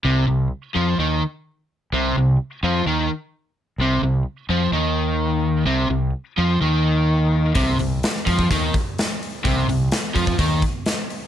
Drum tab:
HH |----------------|----------------|----------------|----------------|
SD |----------------|----------------|----------------|----------------|
BD |----------------|----------------|----------------|----------------|

HH |o-o-o-o-o-o-o-o-|o-o-o-o-o-o-o-o-|
SD |----oo------o---|----o-------o---|
BD |o-----ooo-o-----|o-----ooo-o-----|